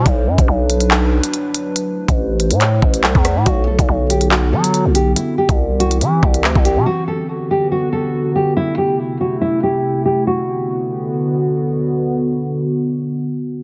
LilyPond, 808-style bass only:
\new Staff \with { instrumentName = "808-style bass" } { \clef bass \time 4/4 \key b \phrygian \tempo 4 = 141 b,,8 fis,16 a,,16 b,,4.~ b,,16 r4 r16 | r8. a,,4 a,8. a,,8 c,16 e,8 a,16 | b,,8. b,,16 b,,4. fis8. b,,8. | r8. c,4~ c,16 e8 c,8 d,16 c,8 c16 |
r1 | r1 | r1 | r1 | }